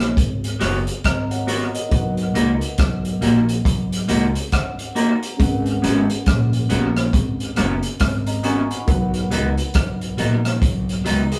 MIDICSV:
0, 0, Header, 1, 6, 480
1, 0, Start_track
1, 0, Tempo, 870827
1, 1054, Time_signature, 4, 2, 24, 8
1, 6280, End_track
2, 0, Start_track
2, 0, Title_t, "Tine electric piano"
2, 0, Program_c, 0, 4
2, 0, Control_c, 0, 64, 127
2, 0, Note_on_c, 0, 59, 78
2, 0, Note_on_c, 0, 66, 71
2, 0, Note_on_c, 0, 68, 68
2, 0, Note_on_c, 0, 70, 70
2, 0, Note_on_c, 0, 73, 82
2, 546, Note_off_c, 0, 59, 0
2, 550, Note_off_c, 0, 66, 0
2, 554, Note_off_c, 0, 68, 0
2, 558, Note_off_c, 0, 70, 0
2, 579, Note_on_c, 0, 82, 70
2, 580, Note_off_c, 0, 73, 0
2, 582, Note_on_c, 0, 75, 57
2, 715, Note_off_c, 0, 82, 0
2, 716, Note_off_c, 0, 75, 0
2, 724, Note_on_c, 0, 78, 73
2, 728, Note_on_c, 0, 73, 63
2, 950, Note_off_c, 0, 78, 0
2, 952, Note_off_c, 0, 73, 0
2, 963, Note_on_c, 0, 75, 68
2, 966, Note_on_c, 0, 70, 60
2, 1043, Note_on_c, 0, 63, 76
2, 1052, Note_off_c, 0, 70, 0
2, 1052, Note_on_c, 0, 66, 70
2, 1059, Note_on_c, 0, 70, 73
2, 1063, Control_c, 0, 64, 0
2, 1068, Note_on_c, 0, 71, 67
2, 1076, Note_on_c, 0, 78, 87
2, 1146, Control_c, 0, 64, 127
2, 1189, Note_off_c, 0, 75, 0
2, 2489, Note_off_c, 0, 78, 0
2, 2496, Note_on_c, 0, 78, 75
2, 2718, Note_off_c, 0, 78, 0
2, 2733, Note_on_c, 0, 82, 74
2, 2946, Note_off_c, 0, 63, 0
2, 2950, Note_off_c, 0, 66, 0
2, 2954, Note_off_c, 0, 70, 0
2, 2956, Note_off_c, 0, 82, 0
2, 2958, Note_off_c, 0, 71, 0
2, 2959, Note_on_c, 0, 61, 80
2, 2968, Note_on_c, 0, 68, 69
2, 2974, Note_on_c, 0, 70, 71
2, 2982, Control_c, 0, 64, 0
2, 2983, Note_on_c, 0, 71, 69
2, 2992, Note_on_c, 0, 78, 88
2, 3083, Control_c, 0, 64, 127
2, 4400, Note_off_c, 0, 78, 0
2, 4558, Note_on_c, 0, 82, 69
2, 4562, Note_on_c, 0, 75, 55
2, 4648, Note_off_c, 0, 82, 0
2, 4650, Note_off_c, 0, 75, 0
2, 4657, Note_on_c, 0, 85, 76
2, 4659, Note_on_c, 0, 80, 64
2, 4793, Note_off_c, 0, 85, 0
2, 4794, Note_off_c, 0, 80, 0
2, 4799, Note_on_c, 0, 83, 71
2, 4804, Note_on_c, 0, 78, 57
2, 4863, Note_off_c, 0, 61, 0
2, 4868, Note_off_c, 0, 68, 0
2, 4871, Note_off_c, 0, 70, 0
2, 4875, Note_off_c, 0, 71, 0
2, 4880, Note_on_c, 0, 63, 73
2, 4887, Note_on_c, 0, 66, 72
2, 4894, Note_on_c, 0, 70, 70
2, 4899, Control_c, 0, 64, 0
2, 4903, Note_on_c, 0, 71, 68
2, 4905, Note_off_c, 0, 78, 0
2, 4911, Note_on_c, 0, 78, 87
2, 4984, Control_c, 0, 64, 127
2, 5026, Note_off_c, 0, 83, 0
2, 6280, Note_off_c, 0, 63, 0
2, 6280, Note_off_c, 0, 66, 0
2, 6280, Note_off_c, 0, 70, 0
2, 6280, Note_off_c, 0, 71, 0
2, 6280, Note_off_c, 0, 78, 0
2, 6280, End_track
3, 0, Start_track
3, 0, Title_t, "Clean electric guitar"
3, 0, Program_c, 1, 27
3, 329, Note_on_c, 1, 59, 83
3, 332, Note_on_c, 1, 66, 85
3, 336, Note_on_c, 1, 70, 92
3, 340, Note_on_c, 1, 73, 104
3, 422, Note_off_c, 1, 59, 0
3, 424, Note_off_c, 1, 66, 0
3, 425, Note_off_c, 1, 70, 0
3, 427, Note_off_c, 1, 73, 0
3, 810, Note_on_c, 1, 59, 80
3, 814, Note_on_c, 1, 66, 85
3, 817, Note_on_c, 1, 70, 91
3, 819, Note_on_c, 1, 73, 93
3, 903, Note_off_c, 1, 59, 0
3, 904, Note_off_c, 1, 66, 0
3, 906, Note_off_c, 1, 70, 0
3, 907, Note_off_c, 1, 73, 0
3, 1292, Note_on_c, 1, 58, 84
3, 1296, Note_on_c, 1, 63, 89
3, 1300, Note_on_c, 1, 66, 85
3, 1302, Note_on_c, 1, 70, 90
3, 1383, Note_off_c, 1, 58, 0
3, 1385, Note_off_c, 1, 63, 0
3, 1387, Note_off_c, 1, 66, 0
3, 1389, Note_off_c, 1, 70, 0
3, 1772, Note_on_c, 1, 58, 82
3, 1776, Note_on_c, 1, 63, 71
3, 1779, Note_on_c, 1, 66, 84
3, 1781, Note_on_c, 1, 70, 78
3, 1863, Note_off_c, 1, 58, 0
3, 1865, Note_off_c, 1, 63, 0
3, 1867, Note_off_c, 1, 66, 0
3, 1868, Note_off_c, 1, 70, 0
3, 2249, Note_on_c, 1, 58, 84
3, 2253, Note_on_c, 1, 63, 88
3, 2257, Note_on_c, 1, 66, 101
3, 2260, Note_on_c, 1, 70, 93
3, 2342, Note_off_c, 1, 58, 0
3, 2344, Note_off_c, 1, 63, 0
3, 2346, Note_off_c, 1, 66, 0
3, 2347, Note_off_c, 1, 70, 0
3, 2730, Note_on_c, 1, 58, 87
3, 2734, Note_on_c, 1, 63, 98
3, 2736, Note_on_c, 1, 66, 99
3, 2739, Note_on_c, 1, 70, 103
3, 2822, Note_off_c, 1, 58, 0
3, 2824, Note_off_c, 1, 63, 0
3, 2825, Note_off_c, 1, 66, 0
3, 2826, Note_off_c, 1, 70, 0
3, 3208, Note_on_c, 1, 59, 85
3, 3214, Note_on_c, 1, 61, 100
3, 3216, Note_on_c, 1, 66, 101
3, 3219, Note_on_c, 1, 70, 96
3, 3301, Note_off_c, 1, 59, 0
3, 3304, Note_off_c, 1, 61, 0
3, 3305, Note_off_c, 1, 66, 0
3, 3307, Note_off_c, 1, 70, 0
3, 3689, Note_on_c, 1, 59, 92
3, 3695, Note_on_c, 1, 61, 86
3, 3697, Note_on_c, 1, 66, 98
3, 3701, Note_on_c, 1, 70, 94
3, 3781, Note_off_c, 1, 59, 0
3, 3784, Note_off_c, 1, 61, 0
3, 3785, Note_off_c, 1, 66, 0
3, 3787, Note_off_c, 1, 70, 0
3, 4170, Note_on_c, 1, 59, 77
3, 4172, Note_on_c, 1, 61, 83
3, 4176, Note_on_c, 1, 66, 90
3, 4179, Note_on_c, 1, 70, 96
3, 4262, Note_off_c, 1, 59, 0
3, 4263, Note_off_c, 1, 61, 0
3, 4265, Note_off_c, 1, 66, 0
3, 4266, Note_off_c, 1, 70, 0
3, 4648, Note_on_c, 1, 59, 86
3, 4652, Note_on_c, 1, 61, 88
3, 4655, Note_on_c, 1, 66, 93
3, 4658, Note_on_c, 1, 70, 89
3, 4740, Note_off_c, 1, 59, 0
3, 4742, Note_off_c, 1, 61, 0
3, 4744, Note_off_c, 1, 66, 0
3, 4746, Note_off_c, 1, 70, 0
3, 5130, Note_on_c, 1, 54, 80
3, 5136, Note_on_c, 1, 59, 83
3, 5138, Note_on_c, 1, 63, 90
3, 5140, Note_on_c, 1, 70, 93
3, 5221, Note_off_c, 1, 54, 0
3, 5224, Note_off_c, 1, 59, 0
3, 5225, Note_off_c, 1, 63, 0
3, 5226, Note_off_c, 1, 70, 0
3, 5609, Note_on_c, 1, 54, 78
3, 5614, Note_on_c, 1, 59, 78
3, 5618, Note_on_c, 1, 63, 85
3, 5620, Note_on_c, 1, 70, 94
3, 5701, Note_off_c, 1, 54, 0
3, 5703, Note_off_c, 1, 59, 0
3, 5705, Note_off_c, 1, 63, 0
3, 5706, Note_off_c, 1, 70, 0
3, 6089, Note_on_c, 1, 54, 82
3, 6094, Note_on_c, 1, 59, 86
3, 6096, Note_on_c, 1, 63, 92
3, 6098, Note_on_c, 1, 70, 88
3, 6180, Note_off_c, 1, 54, 0
3, 6183, Note_off_c, 1, 59, 0
3, 6184, Note_off_c, 1, 63, 0
3, 6185, Note_off_c, 1, 70, 0
3, 6280, End_track
4, 0, Start_track
4, 0, Title_t, "Clean electric guitar"
4, 0, Program_c, 2, 27
4, 6238, Note_on_c, 2, 56, 77
4, 6243, Note_on_c, 2, 47, 67
4, 6280, Note_off_c, 2, 47, 0
4, 6280, Note_off_c, 2, 56, 0
4, 6280, End_track
5, 0, Start_track
5, 0, Title_t, "Upright bass"
5, 0, Program_c, 3, 32
5, 0, Note_on_c, 3, 34, 94
5, 74, Note_off_c, 3, 34, 0
5, 97, Note_on_c, 3, 32, 84
5, 314, Note_off_c, 3, 32, 0
5, 339, Note_on_c, 3, 30, 95
5, 468, Note_off_c, 3, 30, 0
5, 579, Note_on_c, 3, 32, 94
5, 940, Note_off_c, 3, 32, 0
5, 1058, Note_on_c, 3, 35, 117
5, 1274, Note_off_c, 3, 35, 0
5, 1296, Note_on_c, 3, 37, 90
5, 1426, Note_off_c, 3, 37, 0
5, 1538, Note_on_c, 3, 35, 95
5, 1754, Note_off_c, 3, 35, 0
5, 1778, Note_on_c, 3, 34, 90
5, 1994, Note_off_c, 3, 34, 0
5, 2015, Note_on_c, 3, 35, 92
5, 2232, Note_off_c, 3, 35, 0
5, 2258, Note_on_c, 3, 37, 93
5, 2387, Note_off_c, 3, 37, 0
5, 2977, Note_on_c, 3, 32, 109
5, 3193, Note_off_c, 3, 32, 0
5, 3217, Note_on_c, 3, 32, 104
5, 3346, Note_off_c, 3, 32, 0
5, 3458, Note_on_c, 3, 34, 101
5, 3673, Note_off_c, 3, 34, 0
5, 3700, Note_on_c, 3, 34, 97
5, 3914, Note_off_c, 3, 34, 0
5, 3935, Note_on_c, 3, 32, 86
5, 4152, Note_off_c, 3, 32, 0
5, 4180, Note_on_c, 3, 30, 93
5, 4308, Note_off_c, 3, 30, 0
5, 4415, Note_on_c, 3, 32, 94
5, 4777, Note_off_c, 3, 32, 0
5, 4896, Note_on_c, 3, 35, 109
5, 5112, Note_off_c, 3, 35, 0
5, 5142, Note_on_c, 3, 37, 90
5, 5269, Note_off_c, 3, 37, 0
5, 5377, Note_on_c, 3, 35, 94
5, 5592, Note_off_c, 3, 35, 0
5, 5621, Note_on_c, 3, 34, 91
5, 5835, Note_off_c, 3, 34, 0
5, 5856, Note_on_c, 3, 35, 88
5, 6071, Note_off_c, 3, 35, 0
5, 6100, Note_on_c, 3, 37, 90
5, 6227, Note_off_c, 3, 37, 0
5, 6280, End_track
6, 0, Start_track
6, 0, Title_t, "Drums"
6, 2, Note_on_c, 9, 37, 70
6, 2, Note_on_c, 9, 42, 51
6, 57, Note_off_c, 9, 37, 0
6, 57, Note_off_c, 9, 42, 0
6, 94, Note_on_c, 9, 36, 115
6, 97, Note_on_c, 9, 42, 93
6, 149, Note_off_c, 9, 36, 0
6, 152, Note_off_c, 9, 42, 0
6, 243, Note_on_c, 9, 42, 53
6, 298, Note_off_c, 9, 42, 0
6, 334, Note_on_c, 9, 42, 79
6, 339, Note_on_c, 9, 37, 70
6, 389, Note_off_c, 9, 42, 0
6, 394, Note_off_c, 9, 37, 0
6, 480, Note_on_c, 9, 42, 49
6, 535, Note_off_c, 9, 42, 0
6, 575, Note_on_c, 9, 42, 91
6, 576, Note_on_c, 9, 36, 91
6, 581, Note_on_c, 9, 37, 110
6, 630, Note_off_c, 9, 42, 0
6, 631, Note_off_c, 9, 36, 0
6, 637, Note_off_c, 9, 37, 0
6, 722, Note_on_c, 9, 42, 55
6, 777, Note_off_c, 9, 42, 0
6, 816, Note_on_c, 9, 42, 63
6, 871, Note_off_c, 9, 42, 0
6, 962, Note_on_c, 9, 42, 52
6, 1018, Note_off_c, 9, 42, 0
6, 1055, Note_on_c, 9, 42, 92
6, 1056, Note_on_c, 9, 36, 114
6, 1110, Note_off_c, 9, 42, 0
6, 1111, Note_off_c, 9, 36, 0
6, 1198, Note_on_c, 9, 42, 49
6, 1253, Note_off_c, 9, 42, 0
6, 1297, Note_on_c, 9, 42, 89
6, 1352, Note_off_c, 9, 42, 0
6, 1440, Note_on_c, 9, 42, 51
6, 1495, Note_off_c, 9, 42, 0
6, 1532, Note_on_c, 9, 42, 95
6, 1535, Note_on_c, 9, 36, 127
6, 1540, Note_on_c, 9, 37, 112
6, 1587, Note_off_c, 9, 42, 0
6, 1591, Note_off_c, 9, 36, 0
6, 1595, Note_off_c, 9, 37, 0
6, 1681, Note_on_c, 9, 42, 51
6, 1736, Note_off_c, 9, 42, 0
6, 1774, Note_on_c, 9, 42, 78
6, 1829, Note_off_c, 9, 42, 0
6, 1922, Note_on_c, 9, 42, 51
6, 1977, Note_off_c, 9, 42, 0
6, 2013, Note_on_c, 9, 36, 107
6, 2017, Note_on_c, 9, 42, 92
6, 2068, Note_off_c, 9, 36, 0
6, 2072, Note_off_c, 9, 42, 0
6, 2163, Note_on_c, 9, 42, 55
6, 2218, Note_off_c, 9, 42, 0
6, 2252, Note_on_c, 9, 42, 82
6, 2307, Note_off_c, 9, 42, 0
6, 2400, Note_on_c, 9, 42, 50
6, 2455, Note_off_c, 9, 42, 0
6, 2493, Note_on_c, 9, 42, 91
6, 2494, Note_on_c, 9, 36, 93
6, 2499, Note_on_c, 9, 37, 107
6, 2548, Note_off_c, 9, 42, 0
6, 2549, Note_off_c, 9, 36, 0
6, 2554, Note_off_c, 9, 37, 0
6, 2640, Note_on_c, 9, 42, 53
6, 2695, Note_off_c, 9, 42, 0
6, 2733, Note_on_c, 9, 42, 65
6, 2788, Note_off_c, 9, 42, 0
6, 2881, Note_on_c, 9, 42, 50
6, 2936, Note_off_c, 9, 42, 0
6, 2975, Note_on_c, 9, 36, 118
6, 2976, Note_on_c, 9, 42, 97
6, 3030, Note_off_c, 9, 36, 0
6, 3031, Note_off_c, 9, 42, 0
6, 3118, Note_on_c, 9, 42, 48
6, 3174, Note_off_c, 9, 42, 0
6, 3217, Note_on_c, 9, 42, 94
6, 3272, Note_off_c, 9, 42, 0
6, 3361, Note_on_c, 9, 42, 53
6, 3416, Note_off_c, 9, 42, 0
6, 3452, Note_on_c, 9, 42, 96
6, 3454, Note_on_c, 9, 36, 114
6, 3460, Note_on_c, 9, 37, 108
6, 3507, Note_off_c, 9, 42, 0
6, 3509, Note_off_c, 9, 36, 0
6, 3515, Note_off_c, 9, 37, 0
6, 3599, Note_on_c, 9, 42, 49
6, 3654, Note_off_c, 9, 42, 0
6, 3692, Note_on_c, 9, 42, 80
6, 3747, Note_off_c, 9, 42, 0
6, 3839, Note_on_c, 9, 37, 72
6, 3839, Note_on_c, 9, 42, 51
6, 3894, Note_off_c, 9, 42, 0
6, 3895, Note_off_c, 9, 37, 0
6, 3931, Note_on_c, 9, 36, 114
6, 3933, Note_on_c, 9, 42, 94
6, 3987, Note_off_c, 9, 36, 0
6, 3988, Note_off_c, 9, 42, 0
6, 4080, Note_on_c, 9, 42, 55
6, 4135, Note_off_c, 9, 42, 0
6, 4169, Note_on_c, 9, 42, 83
6, 4174, Note_on_c, 9, 37, 72
6, 4224, Note_off_c, 9, 42, 0
6, 4229, Note_off_c, 9, 37, 0
6, 4314, Note_on_c, 9, 42, 48
6, 4369, Note_off_c, 9, 42, 0
6, 4408, Note_on_c, 9, 42, 86
6, 4412, Note_on_c, 9, 36, 92
6, 4414, Note_on_c, 9, 37, 105
6, 4463, Note_off_c, 9, 42, 0
6, 4467, Note_off_c, 9, 36, 0
6, 4469, Note_off_c, 9, 37, 0
6, 4556, Note_on_c, 9, 42, 53
6, 4611, Note_off_c, 9, 42, 0
6, 4650, Note_on_c, 9, 42, 70
6, 4705, Note_off_c, 9, 42, 0
6, 4799, Note_on_c, 9, 42, 52
6, 4854, Note_off_c, 9, 42, 0
6, 4893, Note_on_c, 9, 42, 93
6, 4894, Note_on_c, 9, 36, 121
6, 4948, Note_off_c, 9, 42, 0
6, 4949, Note_off_c, 9, 36, 0
6, 5037, Note_on_c, 9, 42, 50
6, 5092, Note_off_c, 9, 42, 0
6, 5134, Note_on_c, 9, 42, 88
6, 5189, Note_off_c, 9, 42, 0
6, 5278, Note_on_c, 9, 42, 50
6, 5333, Note_off_c, 9, 42, 0
6, 5368, Note_on_c, 9, 42, 97
6, 5374, Note_on_c, 9, 36, 123
6, 5377, Note_on_c, 9, 37, 111
6, 5424, Note_off_c, 9, 42, 0
6, 5429, Note_off_c, 9, 36, 0
6, 5432, Note_off_c, 9, 37, 0
6, 5520, Note_on_c, 9, 42, 51
6, 5575, Note_off_c, 9, 42, 0
6, 5612, Note_on_c, 9, 42, 74
6, 5667, Note_off_c, 9, 42, 0
6, 5761, Note_on_c, 9, 37, 68
6, 5761, Note_on_c, 9, 42, 51
6, 5816, Note_off_c, 9, 37, 0
6, 5816, Note_off_c, 9, 42, 0
6, 5852, Note_on_c, 9, 36, 115
6, 5856, Note_on_c, 9, 42, 90
6, 5907, Note_off_c, 9, 36, 0
6, 5911, Note_off_c, 9, 42, 0
6, 6003, Note_on_c, 9, 42, 52
6, 6058, Note_off_c, 9, 42, 0
6, 6094, Note_on_c, 9, 42, 76
6, 6149, Note_off_c, 9, 42, 0
6, 6238, Note_on_c, 9, 42, 52
6, 6280, Note_off_c, 9, 42, 0
6, 6280, End_track
0, 0, End_of_file